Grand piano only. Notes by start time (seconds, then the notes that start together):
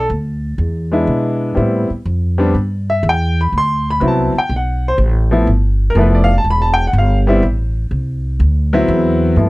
0.92 G#3 B3 D4 E4
1.55 G3 B3 C4 E4
2.38 G3 B3 C4 D4
2.90 E5
3.09 G5
3.41 B5
3.58 C6
3.90 B5
4.00 F#3 B3 C4 E4
4.08 A5
4.38 G5
4.56 F#5
4.88 C5
5.31 F3 A3 B3 E4
5.90 A#4
5.96 F3 A3 B3 E4
6.01 B4
6.15 D5
6.24 F5
6.38 A5
6.50 B5
6.62 A5
6.74 G5
6.87 F#5
6.98 F5
7.27 G3 B3 C4 E4
8.73 F#3 B3 C4 E4
9.37 F3 A3 B3 E4